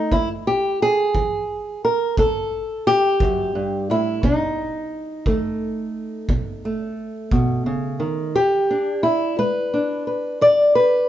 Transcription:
0.00 0.13 D#4 medium
0.12 0.74 E2 medium
0.12 0.28 E4 loud
0.12 kick medium
0.47 0.81 G4 medium
0.82 1.84 G#4 loud
1.15 1.77 E3 medium
1.15 kick soft
1.85 2.18 A#4 medium
2.17 2.80 A2 medium
2.17 2.87 A4 medium
2.17 kick medium
2.87 3.90 G4 loud
3.20 3.55 F#2 medium
3.20 kick medium
3.55 3.89 G2 medium
3.90 4.23 A2 medium
3.90 4.24 E4 medium
4.23 4.85 B2 medium
4.23 6.83 D#4 medium
4.23 kick medium
5.26 5.88 D#3 medium
5.26 6.64 A3 soft
5.26 kick medium
6.29 6.91 B2 medium
6.29 kick medium
6.65 8.32 A3 soft
6.83 8.35 C#4 medium
7.31 7.66 B2 medium
7.31 kick medium
7.66 8.00 C#3 medium
8.00 8.34 D#3 medium
8.35 8.97 E2 medium
8.35 9.04 G4 medium
8.70 9.73 D4 soft
9.03 9.37 E4 medium
9.39 10.00 G#3 medium
9.39 10.06 B4 medium
9.74 11.09 D4 soft
10.07 10.42 B4 soft
10.41 11.03 E2 medium
10.41 10.75 D5 medium
10.75 11.09 B4 medium

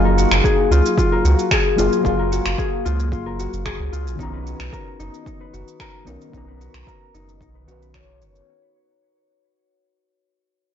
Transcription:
0.00 0.26 F#1 loud
0.00 1.73 F#3 medium
0.00 1.74 A#3 medium
0.00 2.34 D#4 medium
0.00 0.24 F4 medium
0.00 1.77 G#4 medium
0.00 1.76 F5 medium
0.05 1.12 A#4 medium
0.18 0.77 F#4 medium
0.18 shaker medium
0.31 0.41 F#1 loud
0.31 finger snap medium
0.31 shaker soft
0.44 1.51 G#4 medium
0.44 kick medium
0.44 shaker soft
0.71 0.81 C#2 medium
0.71 0.98 F4 medium
0.71 shaker medium
0.86 shaker soft
0.98 1.31 F4 medium
0.98 kick loud
0.98 shaker soft
1.12 2.18 A#4 medium
1.24 1.35 C#2 medium
1.24 1.84 F#4 medium
1.24 shaker medium
1.39 shaker soft
1.51 2.58 G#4 loud
1.51 finger snap medium
1.51 kick loud
1.51 shaker soft
1.76 1.88 F#1 medium
1.76 2.00 F#3 medium
1.76 2.01 A#3 medium
1.76 2.05 F4 medium
1.76 2.02 F4 medium
1.76 2.03 G#4 medium
1.76 shaker medium
1.93 shaker soft
2.01 2.40 F#1 medium
2.01 3.34 F#3 medium
2.01 3.35 A#3 medium
2.01 kick medium
2.05 2.38 F4 medium
2.05 3.37 G#4 medium
2.05 3.36 F5 medium
2.05 shaker soft
2.19 3.26 A#4 medium
2.32 2.91 F#4 medium
2.32 shaker medium
2.45 2.55 F#1 loud
2.45 finger snap medium
2.45 shaker soft
2.58 3.65 G#4 medium
2.58 kick medium
2.58 shaker soft
2.85 3.13 C#2 medium
2.85 3.12 F4 medium
2.85 shaker medium
3.00 shaker soft
3.12 3.47 F#1 medium
3.12 3.45 F4 medium
3.12 kick medium
3.12 shaker soft
3.26 4.39 A#4 medium
3.39 3.98 F#4 medium
3.39 shaker medium
3.53 3.79 F#1 medium
3.53 shaker soft
3.66 5.93 G#4 loud
3.66 finger snap medium
3.66 kick loud
3.66 shaker soft
3.80 3.89 C#2 medium
3.92 4.08 C#2 medium
3.92 4.52 F4 medium
3.92 shaker medium
4.06 4.16 A#1 medium
4.06 shaker soft
4.15 4.54 B1 medium
4.15 6.02 D#3 medium
4.15 6.03 B3 medium
4.15 kick medium
4.19 6.04 C#4 medium
4.19 4.99 D#4 medium
4.19 6.05 A#5 medium
4.19 shaker soft
4.33 4.79 B4 medium
4.46 5.53 F#4 medium
4.46 shaker medium
4.60 4.69 B1 loud
4.60 finger snap medium
4.60 shaker soft
4.73 5.46 A#4 medium
4.73 kick medium
4.73 shaker soft
4.99 5.10 F#1 medium
4.99 5.26 D#4 medium
4.99 shaker medium
5.14 shaker soft
5.26 6.06 D#4 medium
5.26 kick medium
5.26 shaker soft
5.41 5.86 B4 medium
5.53 5.63 F#1 medium
5.53 6.60 F#4 medium
5.53 shaker medium
5.68 shaker soft
5.80 6.54 A#4 loud
5.80 finger snap medium
5.80 kick medium
5.80 shaker soft
6.05 6.17 B1 medium
6.05 6.28 D#3 medium
6.05 6.30 B3 medium
6.05 6.31 C#4 medium
6.05 6.33 D#4 medium
6.05 6.31 A#4 medium
6.05 shaker medium
6.21 shaker soft
6.30 6.68 B1 medium
6.30 7.62 D#3 medium
6.30 7.64 B3 medium
6.30 kick medium
6.34 7.65 C#4 medium
6.34 7.14 D#4 medium
6.34 7.66 A#5 medium
6.34 shaker soft
6.48 6.93 B4 medium
6.60 7.67 F#4 medium
6.60 shaker medium
6.74 6.84 B1 loud
6.74 finger snap medium
6.74 shaker soft
6.87 7.61 A#4 medium
6.87 kick medium
6.87 shaker soft
7.14 7.42 F#1 medium
7.14 7.40 D#4 medium
7.14 shaker medium
7.29 shaker soft
7.41 7.67 B1 medium
7.41 10.11 D#4 medium
7.41 kick medium
7.41 shaker soft
7.55 7.81 B4 medium
7.64 8.22 B1 medium
7.64 8.43 D#3 medium
7.64 8.44 B3 medium
7.64 10.11 F#4 medium
7.69 8.45 C#4 medium
7.69 8.47 B4 medium
7.69 shaker medium
7.82 9.87 B4 medium
7.82 shaker soft
7.94 8.20 C#5 medium
7.94 finger snap medium
7.94 kick medium
7.94 shaker soft
8.21 8.41 F#1 loud
8.21 10.12 C#5 medium
8.21 shaker medium
8.36 shaker soft

